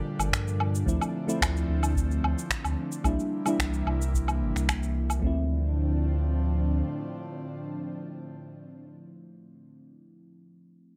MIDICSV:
0, 0, Header, 1, 5, 480
1, 0, Start_track
1, 0, Key_signature, -1, "minor"
1, 0, Tempo, 545455
1, 763, Time_signature, 4, 2, 24, 8
1, 9648, End_track
2, 0, Start_track
2, 0, Title_t, "FM electric piano"
2, 0, Program_c, 0, 5
2, 0, Control_c, 0, 64, 127
2, 0, Note_on_c, 0, 62, 84
2, 0, Note_on_c, 0, 65, 79
2, 0, Note_on_c, 0, 69, 80
2, 0, Note_on_c, 0, 70, 93
2, 756, Note_on_c, 0, 53, 74
2, 761, Note_on_c, 0, 57, 70
2, 770, Note_on_c, 0, 60, 69
2, 772, Control_c, 0, 64, 0
2, 774, Note_off_c, 0, 70, 0
2, 775, Note_off_c, 0, 65, 0
2, 777, Note_off_c, 0, 69, 0
2, 777, Note_on_c, 0, 64, 82
2, 780, Note_off_c, 0, 62, 0
2, 918, Control_c, 0, 64, 127
2, 1093, Note_off_c, 0, 53, 0
2, 1096, Note_off_c, 0, 57, 0
2, 1100, Note_off_c, 0, 60, 0
2, 1104, Note_off_c, 0, 64, 0
2, 1118, Note_on_c, 0, 53, 82
2, 1122, Note_on_c, 0, 57, 76
2, 1132, Note_on_c, 0, 60, 77
2, 1136, Note_on_c, 0, 64, 95
2, 1211, Note_off_c, 0, 53, 0
2, 1213, Note_off_c, 0, 57, 0
2, 1218, Note_off_c, 0, 60, 0
2, 1220, Note_off_c, 0, 64, 0
2, 2675, Note_on_c, 0, 55, 76
2, 2681, Note_on_c, 0, 58, 69
2, 2686, Note_on_c, 0, 62, 70
2, 2695, Control_c, 0, 64, 0
2, 2695, Note_on_c, 0, 64, 82
2, 2822, Control_c, 0, 64, 127
2, 3013, Note_off_c, 0, 55, 0
2, 3016, Note_off_c, 0, 58, 0
2, 3018, Note_off_c, 0, 62, 0
2, 3023, Note_off_c, 0, 64, 0
2, 3043, Note_on_c, 0, 55, 84
2, 3051, Note_on_c, 0, 58, 79
2, 3058, Note_on_c, 0, 62, 75
2, 3063, Note_on_c, 0, 64, 92
2, 3133, Note_off_c, 0, 55, 0
2, 3138, Note_off_c, 0, 58, 0
2, 3141, Note_off_c, 0, 62, 0
2, 3144, Note_off_c, 0, 64, 0
2, 4570, Note_on_c, 0, 53, 70
2, 4592, Note_on_c, 0, 57, 68
2, 4611, Note_on_c, 0, 60, 70
2, 4616, Control_c, 0, 64, 0
2, 4634, Note_on_c, 0, 64, 79
2, 4793, Control_c, 0, 64, 127
2, 8509, Note_off_c, 0, 53, 0
2, 8531, Note_off_c, 0, 57, 0
2, 8550, Note_off_c, 0, 60, 0
2, 8573, Note_off_c, 0, 64, 0
2, 9648, End_track
3, 0, Start_track
3, 0, Title_t, "Analog synth pad"
3, 0, Program_c, 1, 89
3, 0, Note_on_c, 1, 46, 71
3, 0, Note_on_c, 1, 50, 72
3, 0, Note_on_c, 1, 53, 71
3, 0, Note_on_c, 1, 55, 71
3, 0, Note_on_c, 1, 62, 79
3, 727, Note_off_c, 1, 46, 0
3, 727, Note_off_c, 1, 53, 0
3, 743, Note_off_c, 1, 55, 0
3, 764, Note_on_c, 1, 57, 71
3, 765, Note_on_c, 1, 53, 71
3, 766, Note_on_c, 1, 60, 70
3, 2647, Note_off_c, 1, 50, 0
3, 2649, Note_off_c, 1, 62, 0
3, 2664, Note_off_c, 1, 57, 0
3, 2665, Note_off_c, 1, 53, 0
3, 2665, Note_off_c, 1, 60, 0
3, 2683, Note_on_c, 1, 55, 67
3, 2686, Note_on_c, 1, 58, 70
3, 2689, Note_on_c, 1, 52, 68
3, 2691, Note_on_c, 1, 48, 76
3, 2691, Note_on_c, 1, 64, 82
3, 4584, Note_off_c, 1, 55, 0
3, 4585, Note_off_c, 1, 58, 0
3, 4587, Note_off_c, 1, 52, 0
3, 4588, Note_off_c, 1, 48, 0
3, 4588, Note_off_c, 1, 64, 0
3, 4606, Note_on_c, 1, 45, 76
3, 4606, Note_on_c, 1, 53, 72
3, 4606, Note_on_c, 1, 60, 70
3, 4607, Note_on_c, 1, 62, 83
3, 4608, Note_on_c, 1, 50, 70
3, 8545, Note_off_c, 1, 45, 0
3, 8545, Note_off_c, 1, 53, 0
3, 8545, Note_off_c, 1, 60, 0
3, 8546, Note_off_c, 1, 62, 0
3, 8547, Note_off_c, 1, 50, 0
3, 9648, End_track
4, 0, Start_track
4, 0, Title_t, "Sub bass"
4, 0, Program_c, 2, 38
4, 168, Note_on_c, 2, 31, 101
4, 278, Note_off_c, 2, 31, 0
4, 283, Note_on_c, 2, 43, 87
4, 734, Note_off_c, 2, 43, 0
4, 763, Note_on_c, 2, 38, 86
4, 867, Note_off_c, 2, 38, 0
4, 1244, Note_on_c, 2, 38, 92
4, 1447, Note_off_c, 2, 38, 0
4, 1484, Note_on_c, 2, 38, 88
4, 1934, Note_off_c, 2, 38, 0
4, 1965, Note_on_c, 2, 38, 71
4, 2068, Note_off_c, 2, 38, 0
4, 2327, Note_on_c, 2, 38, 89
4, 2425, Note_off_c, 2, 38, 0
4, 2677, Note_on_c, 2, 36, 90
4, 2784, Note_off_c, 2, 36, 0
4, 3159, Note_on_c, 2, 36, 91
4, 3365, Note_off_c, 2, 36, 0
4, 3399, Note_on_c, 2, 36, 90
4, 3885, Note_on_c, 2, 31, 88
4, 3898, Note_off_c, 2, 36, 0
4, 3988, Note_off_c, 2, 31, 0
4, 4011, Note_on_c, 2, 36, 81
4, 4576, Note_off_c, 2, 36, 0
4, 4600, Note_on_c, 2, 38, 86
4, 6006, Note_off_c, 2, 38, 0
4, 9648, End_track
5, 0, Start_track
5, 0, Title_t, "Drums"
5, 172, Note_on_c, 9, 77, 74
5, 178, Note_on_c, 9, 69, 59
5, 260, Note_off_c, 9, 77, 0
5, 266, Note_off_c, 9, 69, 0
5, 283, Note_on_c, 9, 36, 82
5, 294, Note_on_c, 9, 26, 86
5, 300, Note_on_c, 9, 69, 47
5, 371, Note_off_c, 9, 36, 0
5, 382, Note_off_c, 9, 26, 0
5, 388, Note_off_c, 9, 69, 0
5, 420, Note_on_c, 9, 69, 30
5, 508, Note_off_c, 9, 69, 0
5, 530, Note_on_c, 9, 77, 81
5, 618, Note_off_c, 9, 77, 0
5, 660, Note_on_c, 9, 69, 58
5, 748, Note_off_c, 9, 69, 0
5, 764, Note_on_c, 9, 36, 84
5, 778, Note_on_c, 9, 69, 46
5, 852, Note_off_c, 9, 36, 0
5, 866, Note_off_c, 9, 69, 0
5, 893, Note_on_c, 9, 77, 74
5, 899, Note_on_c, 9, 69, 30
5, 981, Note_off_c, 9, 77, 0
5, 987, Note_off_c, 9, 69, 0
5, 1137, Note_on_c, 9, 69, 58
5, 1225, Note_off_c, 9, 69, 0
5, 1243, Note_on_c, 9, 36, 86
5, 1253, Note_on_c, 9, 26, 86
5, 1253, Note_on_c, 9, 77, 74
5, 1259, Note_on_c, 9, 69, 47
5, 1331, Note_off_c, 9, 36, 0
5, 1341, Note_off_c, 9, 26, 0
5, 1341, Note_off_c, 9, 77, 0
5, 1347, Note_off_c, 9, 69, 0
5, 1379, Note_on_c, 9, 69, 28
5, 1467, Note_off_c, 9, 69, 0
5, 1610, Note_on_c, 9, 77, 72
5, 1616, Note_on_c, 9, 69, 54
5, 1698, Note_off_c, 9, 77, 0
5, 1704, Note_off_c, 9, 69, 0
5, 1721, Note_on_c, 9, 36, 93
5, 1738, Note_on_c, 9, 69, 45
5, 1809, Note_off_c, 9, 36, 0
5, 1826, Note_off_c, 9, 69, 0
5, 1859, Note_on_c, 9, 69, 28
5, 1947, Note_off_c, 9, 69, 0
5, 1973, Note_on_c, 9, 77, 76
5, 2061, Note_off_c, 9, 77, 0
5, 2099, Note_on_c, 9, 69, 54
5, 2187, Note_off_c, 9, 69, 0
5, 2201, Note_on_c, 9, 36, 83
5, 2206, Note_on_c, 9, 26, 89
5, 2212, Note_on_c, 9, 69, 46
5, 2289, Note_off_c, 9, 36, 0
5, 2294, Note_off_c, 9, 26, 0
5, 2300, Note_off_c, 9, 69, 0
5, 2328, Note_on_c, 9, 77, 70
5, 2333, Note_on_c, 9, 69, 28
5, 2416, Note_off_c, 9, 77, 0
5, 2421, Note_off_c, 9, 69, 0
5, 2569, Note_on_c, 9, 69, 59
5, 2657, Note_off_c, 9, 69, 0
5, 2679, Note_on_c, 9, 77, 66
5, 2680, Note_on_c, 9, 36, 91
5, 2685, Note_on_c, 9, 69, 46
5, 2767, Note_off_c, 9, 77, 0
5, 2768, Note_off_c, 9, 36, 0
5, 2773, Note_off_c, 9, 69, 0
5, 2812, Note_on_c, 9, 69, 28
5, 2900, Note_off_c, 9, 69, 0
5, 3042, Note_on_c, 9, 77, 74
5, 3048, Note_on_c, 9, 69, 57
5, 3130, Note_off_c, 9, 77, 0
5, 3136, Note_off_c, 9, 69, 0
5, 3161, Note_on_c, 9, 36, 79
5, 3166, Note_on_c, 9, 26, 93
5, 3172, Note_on_c, 9, 69, 47
5, 3249, Note_off_c, 9, 36, 0
5, 3254, Note_off_c, 9, 26, 0
5, 3260, Note_off_c, 9, 69, 0
5, 3289, Note_on_c, 9, 69, 27
5, 3377, Note_off_c, 9, 69, 0
5, 3405, Note_on_c, 9, 77, 64
5, 3493, Note_off_c, 9, 77, 0
5, 3536, Note_on_c, 9, 69, 57
5, 3624, Note_off_c, 9, 69, 0
5, 3643, Note_on_c, 9, 36, 86
5, 3654, Note_on_c, 9, 69, 46
5, 3731, Note_off_c, 9, 36, 0
5, 3742, Note_off_c, 9, 69, 0
5, 3768, Note_on_c, 9, 77, 76
5, 3774, Note_on_c, 9, 69, 27
5, 3856, Note_off_c, 9, 77, 0
5, 3862, Note_off_c, 9, 69, 0
5, 4014, Note_on_c, 9, 26, 29
5, 4019, Note_on_c, 9, 69, 56
5, 4102, Note_off_c, 9, 26, 0
5, 4107, Note_off_c, 9, 69, 0
5, 4121, Note_on_c, 9, 36, 81
5, 4126, Note_on_c, 9, 26, 90
5, 4126, Note_on_c, 9, 77, 73
5, 4132, Note_on_c, 9, 69, 49
5, 4209, Note_off_c, 9, 36, 0
5, 4214, Note_off_c, 9, 26, 0
5, 4214, Note_off_c, 9, 77, 0
5, 4220, Note_off_c, 9, 69, 0
5, 4252, Note_on_c, 9, 69, 27
5, 4340, Note_off_c, 9, 69, 0
5, 4486, Note_on_c, 9, 77, 66
5, 4492, Note_on_c, 9, 69, 57
5, 4574, Note_off_c, 9, 77, 0
5, 4580, Note_off_c, 9, 69, 0
5, 4599, Note_on_c, 9, 36, 90
5, 4687, Note_off_c, 9, 36, 0
5, 9648, End_track
0, 0, End_of_file